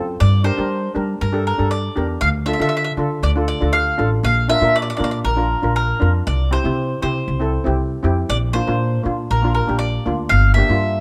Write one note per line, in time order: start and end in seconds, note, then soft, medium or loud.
0.00 0.14 F#2 medium
0.00 0.19 C4 medium
0.00 0.20 F4 medium
0.00 0.20 A4 medium
0.20 0.49 G2 loud
0.20 0.44 D5 loud
0.44 0.52 D4 medium
0.44 0.52 G4 medium
0.44 0.53 A#4 medium
0.44 0.92 C5 loud
0.57 0.86 G3 medium
0.57 0.80 D4 medium
0.57 0.81 G4 medium
0.57 0.81 A#4 medium
0.95 1.14 G3 medium
0.95 1.18 D4 medium
0.95 1.18 G4 medium
0.95 1.19 A#4 medium
1.21 1.50 G2 medium
1.21 1.44 A#4 medium
1.32 1.48 D4 medium
1.32 1.48 G4 medium
1.32 1.49 A4 medium
1.47 1.70 A#4 medium
1.58 1.87 G2 medium
1.58 1.81 D4 medium
1.58 1.81 G4 medium
1.58 1.82 A4 medium
1.71 2.07 D5 medium
1.96 2.16 E2 medium
1.96 2.21 D4 medium
1.96 2.22 G4 medium
1.96 2.22 A#4 medium
2.21 2.50 D2 loud
2.21 2.28 F5 loud
2.46 2.54 D4 medium
2.46 2.55 F4 medium
2.46 2.55 A4 medium
2.46 2.52 E5 medium
2.53 2.60 E5 medium
2.59 2.88 D3 medium
2.59 2.82 D4 medium
2.59 2.83 F4 medium
2.59 2.83 A4 medium
2.59 2.68 E5 medium
2.69 2.76 E5 medium
2.77 2.83 E5 medium
2.84 2.92 E5 medium
2.97 3.16 D3 medium
2.97 3.20 D4 medium
2.97 3.21 F4 medium
2.97 3.21 A4 medium
3.23 3.52 D2 loud
3.23 3.30 D5 loud
3.36 3.51 D4 medium
3.36 3.51 F4 medium
3.36 3.52 A4 medium
3.48 3.72 D5 medium
3.61 3.90 D2 medium
3.61 3.84 D4 medium
3.61 3.84 F4 medium
3.61 3.84 A4 medium
3.73 4.09 F5 loud
3.98 4.18 A1 medium
3.98 4.24 D4 medium
3.98 4.24 F4 medium
3.98 4.25 A4 medium
4.23 4.52 A#1 loud
4.23 4.48 F5 loud
4.49 4.57 D4 medium
4.49 4.57 F4 medium
4.49 4.58 A#4 medium
4.49 4.76 E5 loud
4.61 4.90 A#2 medium
4.61 4.84 D4 medium
4.61 4.85 F4 medium
4.61 4.85 A#4 medium
4.76 4.81 D5 medium
4.82 4.89 D5 medium
4.90 4.95 D5 medium
4.97 5.19 A#2 medium
4.97 5.22 D4 medium
4.97 5.22 F4 medium
4.97 5.23 A#4 medium
4.97 5.03 D5 medium
5.04 5.10 D5 medium
5.11 5.19 D5 medium
5.24 5.54 A#1 medium
5.24 5.75 A#4 medium
5.36 5.52 D4 medium
5.36 5.53 F4 medium
5.36 5.53 A#4 medium
5.62 5.92 A#1 medium
5.62 5.86 D4 medium
5.62 5.86 F4 medium
5.62 5.87 A#4 medium
5.76 6.12 A#4 medium
6.00 6.21 F2 loud
6.00 6.26 D4 medium
6.00 6.26 F4 medium
6.00 6.27 A#4 medium
6.27 6.56 C2 loud
6.27 6.52 D5 loud
6.51 6.59 C4 medium
6.51 6.60 E4 medium
6.51 6.60 G4 medium
6.51 7.01 C5 medium
6.64 6.93 C3 medium
6.64 6.87 C4 medium
6.64 6.88 E4 medium
6.64 6.88 G4 medium
7.02 7.22 C3 medium
7.02 7.25 C4 medium
7.02 7.26 E4 medium
7.02 7.26 G4 medium
7.02 7.74 C5 medium
7.28 7.57 C2 medium
7.40 7.55 C4 medium
7.40 7.56 E4 medium
7.40 7.56 A4 medium
7.64 7.94 C2 medium
7.64 7.88 C4 medium
7.64 7.89 E4 medium
7.64 7.89 G4 loud
8.03 8.23 F2 medium
8.03 8.29 C4 medium
8.03 8.29 E4 medium
8.03 8.30 G4 loud
8.29 8.58 A#1 loud
8.29 8.36 D5 loud
8.53 8.62 A#3 medium
8.53 8.62 D4 medium
8.53 8.63 F4 medium
8.53 9.01 C5 medium
8.67 8.96 A#2 medium
8.67 8.90 A#3 medium
8.67 8.90 D4 medium
8.67 8.91 F4 medium
9.04 9.24 A#2 medium
9.04 9.27 A#3 medium
9.04 9.28 D4 medium
9.04 9.28 F4 medium
9.31 9.59 A#1 medium
9.31 9.53 A#4 medium
9.43 9.58 A#3 medium
9.43 9.59 D4 medium
9.43 9.59 F4 medium
9.55 9.78 A#4 medium
9.67 9.97 A#1 medium
9.67 9.91 A#3 medium
9.67 9.91 D4 medium
9.67 9.92 G4 medium
9.79 10.15 D5 loud
10.06 10.25 D2 medium
10.06 10.31 A#3 medium
10.06 10.32 D4 medium
10.06 10.32 F4 medium
10.29 10.60 G1 loud
10.29 10.54 F5 loud
10.54 10.65 A#3 medium
10.54 10.65 D4 medium
10.54 11.00 E5 loud
10.58 10.65 G4 medium
10.69 10.98 G2 medium
10.69 10.92 A#3 medium
10.69 10.93 D4 medium
10.69 10.93 F4 medium